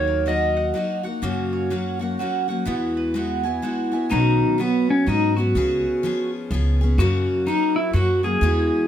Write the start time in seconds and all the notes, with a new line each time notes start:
Already playing: D#2 D#3 F#3 A#3 D#4 F#4 C#5 F#5
0.07 A#4
0.26 F#3 A#3 D#4 F#4 D#5
0.57 F#5
0.74 F#3 A#3 D#4 F#4
1.03 A#3 D#4 F#4 F#5
1.22 F#2 C#3 F#3 A#3 C#4 F#4
1.53 C#5
1.70 F#3 A#3 C#4 F#4
1.99 F#3 A#3 C#4 F#4 F#5
2.19 F#3 A#3 C#4 F#4
2.48 F#3 A#3 C#4 F#4 F#5
2.65 E2 E3 G#3 B3 E4 F#4
2.97 B4
3.14 G#3 B3 E4 F#4
3.43 B3 E4 F#4 G#5
3.62 G#3 B3 E4 F#4
3.92 B3 E4 F#4 G#5
4.09 B1 B2 D#3 F#3 B3 C#4 D#4 F#4
4.58 F#3 B3 C#4 F#4
4.90 C#4
5.06 G#2 F#3 B3 C#4 D#4 F#4
5.37 F#3 B3 C#4 F#4
5.55 C#2 C#3 B3 C#4 G#4
6.03 F3 B3 C#4 G#4
6.51 C#2 F3 B3 C#4 G#4
6.81 B3 C#4 G#4
6.98 F#2 C#3 F#3 A#3 C#4 F#4
7.47 F#3 A#3 C#4 D#4 F#4
7.76 E4
7.93 F#2 F#3 A#3 C#4 F#4
8.23 F#3 A#3 C#4 F#4 G#4
8.41 E2 E3 G#3 B3 E4 F#4